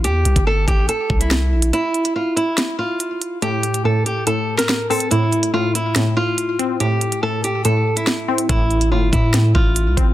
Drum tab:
HH |x-xx--x-x--x---x|x-xx--x-x---x-x-|x-xx--x-x--x--ox|x-xx--x-x---x-x-|
SD |------------o---|--------o-------|-----------oo---|--------o-------|
BD |---o--o---o-----|----------------|----------------|----------------|

HH |x-xx--x-x--x---x|x-xx--x-x---x-x-|
SD |------------o---|--------o-------|
BD |----------------|o-----o---o---o-|